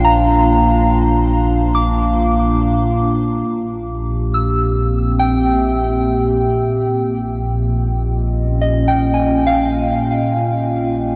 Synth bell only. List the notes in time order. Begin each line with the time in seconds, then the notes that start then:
Already playing: G5
0.05 A#5
1.75 D6
4.34 E6
5.20 G5
8.61 D#5
8.88 G5
9.14 G#5
9.46 F5